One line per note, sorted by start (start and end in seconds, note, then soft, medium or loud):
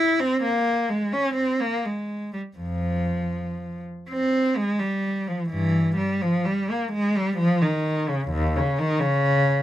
0.00 0.20 E4 medium
0.19 0.43 C4 medium
0.44 0.89 A#3 medium
0.89 1.13 G#3 medium
1.12 1.37 C#4 medium
1.35 1.59 C4 medium
1.60 1.85 A#3 medium
1.85 2.34 G#3 medium
2.33 2.41 G3 medium
2.57 3.28 F2 soft
2.57 3.81 F3 medium
4.09 4.54 C4 medium
4.57 4.81 G#3 medium
4.79 5.28 G3 medium
5.28 5.52 F3 medium
5.50 5.94 G2 medium
5.50 5.97 E3 medium
5.97 6.21 G3 medium
6.22 6.46 F3 medium
6.46 6.69 G3 medium
6.70 6.93 A#3 medium
6.92 7.16 G#3 medium
7.16 7.40 G3 medium
7.37 7.61 F3 medium
7.62 8.09 D#3 medium
8.08 8.32 C#3 medium
8.30 8.53 D#2 medium
8.56 8.78 C#3 medium
8.79 9.01 D#3 medium
8.99 9.62 C#3 loud